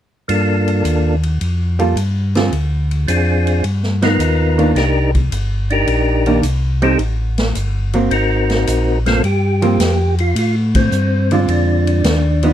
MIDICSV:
0, 0, Header, 1, 5, 480
1, 0, Start_track
1, 0, Key_signature, -2, "minor"
1, 0, Tempo, 559701
1, 251, Time_signature, 4, 2, 24, 8
1, 10747, End_track
2, 0, Start_track
2, 0, Title_t, "Tonewheel organ"
2, 0, Program_c, 0, 16
2, 241, Note_on_c, 0, 58, 47
2, 246, Note_on_c, 0, 62, 41
2, 249, Note_on_c, 0, 65, 38
2, 260, Note_on_c, 0, 69, 53
2, 989, Note_off_c, 0, 58, 0
2, 991, Note_off_c, 0, 62, 0
2, 993, Note_off_c, 0, 65, 0
2, 998, Note_off_c, 0, 69, 0
2, 2639, Note_on_c, 0, 60, 51
2, 2641, Note_on_c, 0, 62, 42
2, 2644, Note_on_c, 0, 65, 44
2, 2652, Note_on_c, 0, 68, 52
2, 3120, Note_off_c, 0, 60, 0
2, 3121, Note_off_c, 0, 62, 0
2, 3123, Note_off_c, 0, 65, 0
2, 3127, Note_off_c, 0, 68, 0
2, 3455, Note_on_c, 0, 59, 53
2, 3461, Note_on_c, 0, 63, 49
2, 3467, Note_on_c, 0, 65, 50
2, 3473, Note_on_c, 0, 70, 59
2, 4053, Note_off_c, 0, 59, 0
2, 4055, Note_off_c, 0, 63, 0
2, 4058, Note_off_c, 0, 65, 0
2, 4061, Note_off_c, 0, 70, 0
2, 4080, Note_on_c, 0, 62, 56
2, 4085, Note_on_c, 0, 63, 53
2, 4091, Note_on_c, 0, 67, 51
2, 4095, Note_on_c, 0, 70, 61
2, 4379, Note_off_c, 0, 62, 0
2, 4381, Note_off_c, 0, 63, 0
2, 4384, Note_off_c, 0, 67, 0
2, 4386, Note_off_c, 0, 70, 0
2, 4892, Note_on_c, 0, 62, 61
2, 4902, Note_on_c, 0, 63, 50
2, 4905, Note_on_c, 0, 67, 53
2, 4912, Note_on_c, 0, 70, 63
2, 5491, Note_off_c, 0, 62, 0
2, 5496, Note_off_c, 0, 63, 0
2, 5497, Note_off_c, 0, 67, 0
2, 5501, Note_off_c, 0, 70, 0
2, 5852, Note_on_c, 0, 60, 58
2, 5856, Note_on_c, 0, 63, 54
2, 5859, Note_on_c, 0, 67, 55
2, 5868, Note_on_c, 0, 69, 67
2, 5986, Note_off_c, 0, 60, 0
2, 5988, Note_off_c, 0, 63, 0
2, 5990, Note_off_c, 0, 67, 0
2, 5994, Note_off_c, 0, 69, 0
2, 6955, Note_on_c, 0, 60, 50
2, 6961, Note_on_c, 0, 63, 43
2, 6965, Note_on_c, 0, 66, 47
2, 6973, Note_on_c, 0, 70, 51
2, 7704, Note_off_c, 0, 60, 0
2, 7707, Note_off_c, 0, 63, 0
2, 7709, Note_off_c, 0, 66, 0
2, 7713, Note_off_c, 0, 70, 0
2, 7768, Note_on_c, 0, 43, 55
2, 7772, Note_on_c, 0, 58, 46
2, 7776, Note_on_c, 0, 60, 50
2, 7780, Note_on_c, 0, 65, 52
2, 7784, Note_on_c, 0, 69, 61
2, 7905, Note_off_c, 0, 43, 0
2, 7907, Note_off_c, 0, 58, 0
2, 7909, Note_off_c, 0, 60, 0
2, 7911, Note_off_c, 0, 65, 0
2, 7913, Note_off_c, 0, 69, 0
2, 7931, Note_on_c, 0, 67, 88
2, 8705, Note_off_c, 0, 67, 0
2, 8751, Note_on_c, 0, 65, 80
2, 8882, Note_off_c, 0, 65, 0
2, 8907, Note_on_c, 0, 65, 77
2, 9052, Note_off_c, 0, 65, 0
2, 9227, Note_on_c, 0, 60, 76
2, 9717, Note_off_c, 0, 60, 0
2, 9717, Note_on_c, 0, 62, 77
2, 9779, Note_off_c, 0, 62, 0
2, 9861, Note_on_c, 0, 62, 73
2, 10747, Note_off_c, 0, 62, 0
2, 10747, End_track
3, 0, Start_track
3, 0, Title_t, "Hollow-body jazz guitar"
3, 0, Program_c, 1, 26
3, 1536, Note_on_c, 1, 55, 49
3, 1539, Note_on_c, 1, 58, 52
3, 1542, Note_on_c, 1, 65, 52
3, 1546, Note_on_c, 1, 69, 50
3, 1671, Note_off_c, 1, 55, 0
3, 1672, Note_off_c, 1, 58, 0
3, 1674, Note_off_c, 1, 65, 0
3, 1676, Note_off_c, 1, 69, 0
3, 2020, Note_on_c, 1, 50, 41
3, 2024, Note_on_c, 1, 60, 48
3, 2029, Note_on_c, 1, 65, 48
3, 2032, Note_on_c, 1, 68, 50
3, 2152, Note_off_c, 1, 50, 0
3, 2154, Note_off_c, 1, 60, 0
3, 2156, Note_off_c, 1, 65, 0
3, 2158, Note_off_c, 1, 68, 0
3, 3450, Note_on_c, 1, 53, 49
3, 3454, Note_on_c, 1, 59, 56
3, 3460, Note_on_c, 1, 63, 60
3, 3585, Note_off_c, 1, 53, 0
3, 3588, Note_off_c, 1, 59, 0
3, 3590, Note_off_c, 1, 63, 0
3, 3929, Note_on_c, 1, 51, 50
3, 3935, Note_on_c, 1, 58, 57
3, 3938, Note_on_c, 1, 62, 58
3, 4065, Note_off_c, 1, 51, 0
3, 4067, Note_off_c, 1, 58, 0
3, 4069, Note_off_c, 1, 62, 0
3, 5375, Note_on_c, 1, 51, 41
3, 5380, Note_on_c, 1, 58, 48
3, 5382, Note_on_c, 1, 62, 46
3, 5507, Note_off_c, 1, 51, 0
3, 5510, Note_off_c, 1, 58, 0
3, 5511, Note_off_c, 1, 62, 0
3, 5849, Note_on_c, 1, 55, 64
3, 5854, Note_on_c, 1, 60, 55
3, 5857, Note_on_c, 1, 63, 60
3, 5984, Note_off_c, 1, 55, 0
3, 5987, Note_off_c, 1, 60, 0
3, 5989, Note_off_c, 1, 63, 0
3, 6809, Note_on_c, 1, 54, 44
3, 6816, Note_on_c, 1, 58, 54
3, 6821, Note_on_c, 1, 60, 58
3, 6945, Note_off_c, 1, 54, 0
3, 6948, Note_off_c, 1, 58, 0
3, 6951, Note_off_c, 1, 60, 0
3, 8252, Note_on_c, 1, 53, 58
3, 8257, Note_on_c, 1, 58, 60
3, 8259, Note_on_c, 1, 60, 58
3, 8387, Note_off_c, 1, 53, 0
3, 8390, Note_off_c, 1, 58, 0
3, 8391, Note_off_c, 1, 60, 0
3, 9705, Note_on_c, 1, 50, 56
3, 9707, Note_on_c, 1, 56, 55
3, 9713, Note_on_c, 1, 60, 57
3, 9714, Note_on_c, 1, 65, 68
3, 10302, Note_off_c, 1, 50, 0
3, 10303, Note_off_c, 1, 56, 0
3, 10305, Note_off_c, 1, 60, 0
3, 10306, Note_off_c, 1, 65, 0
3, 10664, Note_on_c, 1, 53, 56
3, 10669, Note_on_c, 1, 59, 71
3, 10675, Note_on_c, 1, 63, 62
3, 10747, Note_off_c, 1, 53, 0
3, 10747, Note_off_c, 1, 59, 0
3, 10747, Note_off_c, 1, 63, 0
3, 10747, End_track
4, 0, Start_track
4, 0, Title_t, "Tonewheel organ"
4, 0, Program_c, 2, 16
4, 247, Note_on_c, 2, 43, 62
4, 713, Note_off_c, 2, 43, 0
4, 723, Note_on_c, 2, 39, 70
4, 1191, Note_off_c, 2, 39, 0
4, 1212, Note_on_c, 2, 41, 63
4, 1674, Note_off_c, 2, 41, 0
4, 1679, Note_on_c, 2, 43, 74
4, 2147, Note_off_c, 2, 43, 0
4, 2162, Note_on_c, 2, 38, 66
4, 2628, Note_off_c, 2, 38, 0
4, 2644, Note_on_c, 2, 41, 77
4, 3108, Note_off_c, 2, 41, 0
4, 3124, Note_on_c, 2, 43, 67
4, 3588, Note_off_c, 2, 43, 0
4, 3597, Note_on_c, 2, 39, 75
4, 4065, Note_off_c, 2, 39, 0
4, 4075, Note_on_c, 2, 36, 65
4, 4543, Note_off_c, 2, 36, 0
4, 4558, Note_on_c, 2, 31, 75
4, 5025, Note_off_c, 2, 31, 0
4, 5038, Note_on_c, 2, 34, 69
4, 5505, Note_off_c, 2, 34, 0
4, 5512, Note_on_c, 2, 36, 76
4, 5982, Note_off_c, 2, 36, 0
4, 5993, Note_on_c, 2, 33, 67
4, 6463, Note_off_c, 2, 33, 0
4, 6478, Note_on_c, 2, 31, 73
4, 6946, Note_off_c, 2, 31, 0
4, 6954, Note_on_c, 2, 32, 64
4, 7424, Note_off_c, 2, 32, 0
4, 7440, Note_on_c, 2, 34, 74
4, 7907, Note_off_c, 2, 34, 0
4, 7919, Note_on_c, 2, 43, 69
4, 8387, Note_off_c, 2, 43, 0
4, 8402, Note_on_c, 2, 41, 78
4, 8869, Note_off_c, 2, 41, 0
4, 8879, Note_on_c, 2, 45, 70
4, 9348, Note_off_c, 2, 45, 0
4, 9362, Note_on_c, 2, 43, 82
4, 9830, Note_off_c, 2, 43, 0
4, 9847, Note_on_c, 2, 41, 73
4, 10313, Note_off_c, 2, 41, 0
4, 10326, Note_on_c, 2, 39, 86
4, 10747, Note_off_c, 2, 39, 0
4, 10747, End_track
5, 0, Start_track
5, 0, Title_t, "Drums"
5, 248, Note_on_c, 9, 51, 46
5, 333, Note_off_c, 9, 51, 0
5, 580, Note_on_c, 9, 51, 35
5, 665, Note_off_c, 9, 51, 0
5, 728, Note_on_c, 9, 44, 51
5, 728, Note_on_c, 9, 51, 47
5, 813, Note_off_c, 9, 44, 0
5, 813, Note_off_c, 9, 51, 0
5, 1058, Note_on_c, 9, 51, 37
5, 1144, Note_off_c, 9, 51, 0
5, 1208, Note_on_c, 9, 51, 48
5, 1294, Note_off_c, 9, 51, 0
5, 1538, Note_on_c, 9, 51, 34
5, 1624, Note_off_c, 9, 51, 0
5, 1688, Note_on_c, 9, 44, 41
5, 1688, Note_on_c, 9, 51, 53
5, 1773, Note_off_c, 9, 44, 0
5, 1773, Note_off_c, 9, 51, 0
5, 2017, Note_on_c, 9, 51, 36
5, 2021, Note_on_c, 9, 38, 41
5, 2103, Note_off_c, 9, 51, 0
5, 2107, Note_off_c, 9, 38, 0
5, 2165, Note_on_c, 9, 51, 43
5, 2251, Note_off_c, 9, 51, 0
5, 2496, Note_on_c, 9, 51, 38
5, 2582, Note_off_c, 9, 51, 0
5, 2643, Note_on_c, 9, 44, 51
5, 2643, Note_on_c, 9, 51, 52
5, 2729, Note_off_c, 9, 44, 0
5, 2729, Note_off_c, 9, 51, 0
5, 2974, Note_on_c, 9, 51, 36
5, 3060, Note_off_c, 9, 51, 0
5, 3121, Note_on_c, 9, 51, 45
5, 3206, Note_off_c, 9, 51, 0
5, 3286, Note_on_c, 9, 38, 23
5, 3372, Note_off_c, 9, 38, 0
5, 3446, Note_on_c, 9, 38, 30
5, 3450, Note_on_c, 9, 51, 36
5, 3532, Note_off_c, 9, 38, 0
5, 3536, Note_off_c, 9, 51, 0
5, 3601, Note_on_c, 9, 44, 52
5, 3601, Note_on_c, 9, 51, 54
5, 3687, Note_off_c, 9, 44, 0
5, 3687, Note_off_c, 9, 51, 0
5, 3933, Note_on_c, 9, 51, 34
5, 4019, Note_off_c, 9, 51, 0
5, 4083, Note_on_c, 9, 51, 42
5, 4087, Note_on_c, 9, 38, 29
5, 4168, Note_off_c, 9, 51, 0
5, 4173, Note_off_c, 9, 38, 0
5, 4414, Note_on_c, 9, 51, 39
5, 4416, Note_on_c, 9, 36, 46
5, 4499, Note_off_c, 9, 51, 0
5, 4502, Note_off_c, 9, 36, 0
5, 4563, Note_on_c, 9, 44, 45
5, 4563, Note_on_c, 9, 51, 54
5, 4648, Note_off_c, 9, 44, 0
5, 4648, Note_off_c, 9, 51, 0
5, 4891, Note_on_c, 9, 51, 35
5, 4976, Note_off_c, 9, 51, 0
5, 5038, Note_on_c, 9, 51, 44
5, 5124, Note_off_c, 9, 51, 0
5, 5368, Note_on_c, 9, 51, 36
5, 5453, Note_off_c, 9, 51, 0
5, 5515, Note_on_c, 9, 44, 50
5, 5515, Note_on_c, 9, 51, 55
5, 5601, Note_off_c, 9, 44, 0
5, 5601, Note_off_c, 9, 51, 0
5, 5848, Note_on_c, 9, 51, 36
5, 5934, Note_off_c, 9, 51, 0
5, 5994, Note_on_c, 9, 51, 40
5, 6080, Note_off_c, 9, 51, 0
5, 6326, Note_on_c, 9, 51, 40
5, 6331, Note_on_c, 9, 38, 47
5, 6412, Note_off_c, 9, 51, 0
5, 6416, Note_off_c, 9, 38, 0
5, 6476, Note_on_c, 9, 44, 44
5, 6476, Note_on_c, 9, 51, 51
5, 6562, Note_off_c, 9, 44, 0
5, 6562, Note_off_c, 9, 51, 0
5, 6804, Note_on_c, 9, 51, 37
5, 6890, Note_off_c, 9, 51, 0
5, 6955, Note_on_c, 9, 51, 45
5, 7041, Note_off_c, 9, 51, 0
5, 7286, Note_on_c, 9, 51, 35
5, 7290, Note_on_c, 9, 38, 29
5, 7372, Note_off_c, 9, 51, 0
5, 7376, Note_off_c, 9, 38, 0
5, 7438, Note_on_c, 9, 44, 57
5, 7438, Note_on_c, 9, 51, 57
5, 7524, Note_off_c, 9, 44, 0
5, 7524, Note_off_c, 9, 51, 0
5, 7771, Note_on_c, 9, 51, 35
5, 7775, Note_on_c, 9, 38, 34
5, 7857, Note_off_c, 9, 51, 0
5, 7861, Note_off_c, 9, 38, 0
5, 7922, Note_on_c, 9, 51, 43
5, 8008, Note_off_c, 9, 51, 0
5, 8251, Note_on_c, 9, 51, 43
5, 8337, Note_off_c, 9, 51, 0
5, 8403, Note_on_c, 9, 44, 53
5, 8403, Note_on_c, 9, 51, 60
5, 8407, Note_on_c, 9, 38, 55
5, 8489, Note_off_c, 9, 44, 0
5, 8489, Note_off_c, 9, 51, 0
5, 8493, Note_off_c, 9, 38, 0
5, 8734, Note_on_c, 9, 51, 39
5, 8820, Note_off_c, 9, 51, 0
5, 8885, Note_on_c, 9, 51, 61
5, 8971, Note_off_c, 9, 51, 0
5, 9216, Note_on_c, 9, 51, 64
5, 9220, Note_on_c, 9, 36, 72
5, 9302, Note_off_c, 9, 51, 0
5, 9306, Note_off_c, 9, 36, 0
5, 9363, Note_on_c, 9, 44, 57
5, 9449, Note_off_c, 9, 44, 0
5, 9698, Note_on_c, 9, 51, 37
5, 9784, Note_off_c, 9, 51, 0
5, 9849, Note_on_c, 9, 51, 45
5, 9935, Note_off_c, 9, 51, 0
5, 10181, Note_on_c, 9, 51, 42
5, 10267, Note_off_c, 9, 51, 0
5, 10328, Note_on_c, 9, 44, 52
5, 10328, Note_on_c, 9, 51, 57
5, 10332, Note_on_c, 9, 38, 56
5, 10414, Note_off_c, 9, 44, 0
5, 10414, Note_off_c, 9, 51, 0
5, 10418, Note_off_c, 9, 38, 0
5, 10656, Note_on_c, 9, 51, 41
5, 10742, Note_off_c, 9, 51, 0
5, 10747, End_track
0, 0, End_of_file